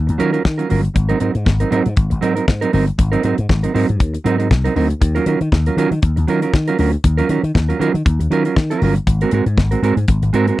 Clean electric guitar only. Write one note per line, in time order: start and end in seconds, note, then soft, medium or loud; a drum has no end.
0.07 muted clean electric guitar stroke soft
0.18 0.33 F#3 medium
0.18 0.33 C#4 medium
0.18 0.32 F4 medium
0.18 0.31 A#4 loud
0.33 0.43 F#3 medium
0.33 0.44 C#4 medium
0.33 0.43 F4 medium
0.33 0.43 A#4 medium
0.44 muted clean electric guitar stroke soft
0.58 0.68 F#3 medium
0.58 0.69 C#4 medium
0.58 0.69 F4 medium
0.58 0.70 A#4 medium
0.69 0.82 F#3 medium
0.69 0.82 C#4 medium
0.69 0.83 F4 medium
0.69 0.82 A#4 medium
0.83 muted clean electric guitar stroke soft
0.94 muted clean electric guitar stroke soft
1.09 1.19 F#3 medium
1.09 1.19 C4 medium
1.09 1.20 D#4 medium
1.09 1.20 A#4 medium
1.20 1.33 F#3 medium
1.20 1.33 C4 medium
1.20 1.33 D#4 medium
1.20 1.33 A#4 medium
1.34 muted clean electric guitar stroke soft
1.45 muted clean electric guitar stroke soft
1.60 1.69 F#3 soft
1.60 1.71 C4 medium
1.60 1.71 D#4 medium
1.60 1.70 A#4 medium
1.71 1.87 F#3 medium
1.71 1.85 C4 medium
1.71 1.85 D#4 medium
1.71 1.84 A#4 loud
1.85 muted clean electric guitar stroke soft
1.96 muted clean electric guitar stroke soft
2.10 muted clean electric guitar stroke soft
2.21 2.36 F#3 medium
2.21 2.36 C4 medium
2.21 2.35 D#4 medium
2.21 2.34 A#4 medium
2.36 2.46 F#3 soft
2.36 2.47 C4 soft
2.36 2.46 D#4 medium
2.36 2.46 A#4 medium
2.61 2.71 F#3 medium
2.61 2.72 C4 medium
2.61 2.72 D#4 medium
2.61 2.73 A#4 medium
2.72 2.85 F#3 medium
2.72 2.85 C4 medium
2.72 2.86 D#4 medium
2.72 2.86 A#4 medium
2.87 muted clean electric guitar stroke soft
2.98 muted clean electric guitar stroke soft
3.12 3.22 F#3 medium
3.12 3.23 C4 medium
3.12 3.24 D#4 medium
3.12 3.24 A#4 medium
3.23 3.36 F#3 medium
3.23 3.36 C4 medium
3.23 3.37 D#4 medium
3.23 3.36 A#4 medium
3.50 muted clean electric guitar stroke soft
3.63 3.73 F#3 medium
3.63 3.73 C4 medium
3.63 3.73 D#4 medium
3.63 3.73 A#4 medium
3.74 3.90 F#3 medium
3.74 3.89 C4 loud
3.74 3.88 D#4 medium
3.74 3.88 A#4 medium
3.89 muted clean electric guitar stroke soft
4.00 muted clean electric guitar stroke soft
4.14 muted clean electric guitar stroke soft
4.24 4.39 F#3 medium
4.24 4.38 C4 medium
4.24 4.38 D#4 medium
4.24 4.37 A#4 medium
4.40 4.49 F#3 medium
4.40 4.49 C4 medium
4.64 4.74 F#3 medium
4.64 4.75 C4 medium
4.64 4.75 D#4 medium
4.64 4.76 A#4 medium
4.75 4.88 F#3 medium
4.75 4.88 C4 medium
4.75 4.88 D#4 medium
4.75 4.88 A#4 medium
4.90 muted clean electric guitar stroke soft
5.01 muted clean electric guitar stroke medium
5.15 5.26 F#3 medium
5.15 5.26 C#4 medium
5.15 5.26 F4 medium
5.15 5.27 A#4 medium
5.27 5.39 F#3 medium
5.27 5.39 C#4 medium
5.27 5.39 F4 medium
5.27 5.40 A#4 medium
5.52 muted clean electric guitar stroke soft
5.67 5.76 F#3 medium
5.67 5.77 C#4 medium
5.67 5.76 F4 medium
5.67 5.76 A#4 medium
5.77 5.93 F#3 medium
5.77 5.92 C#4 medium
5.77 5.91 F4 loud
5.77 5.90 A#4 medium
5.91 muted clean electric guitar stroke soft
6.02 muted clean electric guitar stroke soft
6.16 muted clean electric guitar stroke soft
6.28 6.43 F#3 medium
6.28 6.42 C#4 medium
6.28 6.41 F4 loud
6.28 6.41 A#4 medium
6.42 6.53 F#3 soft
6.42 6.52 C#4 medium
6.42 6.52 F4 medium
6.42 6.52 A#4 medium
6.55 muted clean electric guitar stroke soft
6.68 6.77 F#3 medium
6.68 6.78 C#4 medium
6.68 6.79 F4 medium
6.68 6.79 A#4 medium
6.78 6.91 F#3 medium
6.78 6.91 C#4 medium
6.78 6.91 F4 medium
6.78 6.92 A#4 medium
7.04 muted clean electric guitar stroke soft
7.17 7.28 F#3 medium
7.17 7.29 C#4 medium
7.17 7.30 F4 medium
7.17 7.30 A#4 medium
7.29 7.42 F#3 medium
7.29 7.42 C#4 medium
7.29 7.42 F4 medium
7.29 7.42 A#4 medium
7.54 muted clean electric guitar stroke soft
7.69 7.78 F#3 medium
7.69 7.79 C#4 medium
7.69 7.79 F4 medium
7.69 7.78 A#4 medium
7.79 7.95 F#3 medium
7.79 7.94 C#4 loud
7.79 7.94 F4 loud
7.79 7.93 A#4 loud
7.94 muted clean electric guitar stroke soft
8.05 muted clean electric guitar stroke soft
8.20 muted clean electric guitar stroke soft
8.31 8.46 F#3 medium
8.31 8.46 C#4 medium
8.31 8.45 F4 medium
8.31 8.44 A#4 medium
8.46 8.55 F#3 medium
8.46 8.55 C#4 medium
8.46 8.55 F4 medium
8.70 8.81 F#3 medium
8.70 8.82 C#4 medium
8.70 8.82 F4 medium
8.70 8.83 A#4 medium
8.82 8.94 F#3 medium
8.82 8.94 C#4 medium
8.82 8.95 F4 medium
8.82 8.95 A#4 medium
8.96 muted clean electric guitar stroke soft
9.07 muted clean electric guitar stroke soft
9.22 9.31 G#3 medium
9.22 9.32 C4 medium
9.22 9.32 F#4 medium
9.22 9.33 A#4 medium
9.32 9.44 G#3 medium
9.32 9.45 C4 medium
9.32 9.45 F#4 medium
9.32 9.45 A#4 medium
9.58 muted clean electric guitar stroke soft
9.71 9.81 G#3 soft
9.71 9.82 C4 medium
9.71 9.82 F#4 medium
9.71 9.81 A#4 medium
9.83 9.98 G#3 medium
9.83 9.97 C4 loud
9.83 9.96 F#4 medium
9.83 9.95 A#4 loud
9.97 muted clean electric guitar stroke soft
10.09 muted clean electric guitar stroke soft
10.23 muted clean electric guitar stroke soft
10.33 10.49 G#3 medium
10.33 10.48 C4 loud
10.33 10.48 F#4 loud
10.33 10.47 A#4 loud
10.48 10.58 G#3 medium
10.48 10.58 A#4 medium